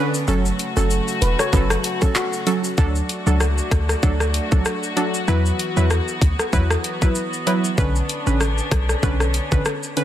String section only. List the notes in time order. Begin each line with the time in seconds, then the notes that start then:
Already playing: B3 C#4 D4
0.28 C#3 A3 F#4
2.78 A3 D4 F#4
5.28 E3 B3
7.78 C#4 D4